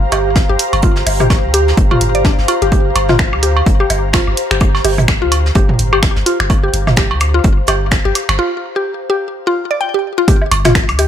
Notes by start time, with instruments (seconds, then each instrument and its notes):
Already playing: ambient pad G4 C5 F5 A#5
0.12 sub bass G1, synth arpeggio sound G4, closed hi-hat, cowbell, low woodblock
0.35 kick, snare, closed hi-hat
0.49 sub bass G1, synth arpeggio sound G4
0.59 closed hi-hat
0.73 sub bass G1, closed hi-hat, cowbell
0.82 synth arpeggio sound F4, kick, closed hi-hat
0.96 snare
1.07 sub bass G1, closed hi-hat, open hi-hat, low woodblock
1.20 synth arpeggio sound G4, closed hi-hat, mid tom, low woodblock
1.30 kick, snare, closed hi-hat, cowbell
1.44 sub bass D2
1.54 synth arpeggio sound G4, closed hi-hat
1.68 snare
1.77 sub bass G1, kick, closed hi-hat
1.91 synth arpeggio sound F4, mid tom, cowbell
2.01 sub bass G1, closed hi-hat
2.15 synth arpeggio sound D5, closed hi-hat
2.25 synth arpeggio sound D4, kick, snare, closed hi-hat
2.38 sub bass G1, snare
2.48 synth arpeggio sound F4, closed hi-hat, cowbell
2.62 sub bass G1, synth arpeggio sound G4, closed hi-hat
2.72 synth arpeggio sound G4, kick, closed hi-hat
2.96 sub bass G1, closed hi-hat, cowbell, high woodblock
3.09 synth arpeggio sound F4, snare, mid tom, low woodblock
3.19 finger snap, kick, snare, closed hi-hat
3.33 sub bass D2, high woodblock
3.43 synth arpeggio sound G4, closed hi-hat
3.57 cowbell
3.66 sub bass G1, kick, closed hi-hat
3.80 synth arpeggio sound G4, high woodblock
3.90 sub bass G1, closed hi-hat, low woodblock
4.13 synth arpeggio sound F4, finger snap, kick, snare, closed hi-hat, cowbell
4.27 sub bass G1, high woodblock
4.37 closed hi-hat
4.51 sub bass G1, synth arpeggio sound G4, finger snap, closed hi-hat
4.60 kick, closed hi-hat, high woodblock
4.75 snare, cowbell
4.84 sub bass G1, synth arpeggio sound G4, closed hi-hat, open hi-hat, low woodblock
4.98 closed hi-hat, mid tom, low woodblock
5.08 finger snap, kick, snare, closed hi-hat, high woodblock
5.22 sub bass D2, synth arpeggio sound F4
5.32 closed hi-hat, cowbell
5.46 snare
5.55 sub bass G1, synth arpeggio sound G4, kick, closed hi-hat, high woodblock
5.69 mid tom
5.79 sub bass G1, closed hi-hat
5.93 synth arpeggio sound G4, cowbell, high woodblock
6.03 finger snap, kick, snare, closed hi-hat
6.16 sub bass G1, snare
6.26 synth arpeggio sound F4, closed hi-hat
6.40 sub bass G1, finger snap, closed hi-hat, high woodblock
6.50 kick, closed hi-hat, cowbell
6.63 synth arpeggio sound G4
6.73 sub bass G1, closed hi-hat
6.87 snare, mid tom, high woodblock, low woodblock
6.96 synth arpeggio sound G4, finger snap, kick, snare, closed hi-hat
7.11 sub bass D2, cowbell
7.20 closed hi-hat, high woodblock
7.34 synth arpeggio sound F4
7.44 sub bass G1, kick, closed hi-hat
7.67 sub bass G1, synth arpeggio sound G4, closed hi-hat, cowbell, high woodblock, low woodblock
7.91 finger snap, kick, snare, closed hi-hat
8.05 sub bass G1, synth arpeggio sound G4
8.15 closed hi-hat, high woodblock
8.29 sub bass G1, finger snap, closed hi-hat, cowbell
8.39 synth arpeggio sound F4
8.76 synth arpeggio sound G4
9.10 synth arpeggio sound G4
9.47 synth arpeggio sound F4
9.71 synth arpeggio sound D5
9.81 synth arpeggio sound G5
9.94 synth arpeggio sound G4
10.18 synth arpeggio sound F4
10.28 synth arpeggio sound G4, kick, closed hi-hat
10.42 low woodblock
10.51 sub bass G1, closed hi-hat, cowbell, high woodblock
10.65 synth arpeggio sound F4, snare, closed hi-hat, mid tom, low woodblock
10.75 finger snap, kick, snare, closed hi-hat
10.89 sub bass D2, closed hi-hat, high woodblock
10.99 synth arpeggio sound G4, closed hi-hat, low woodblock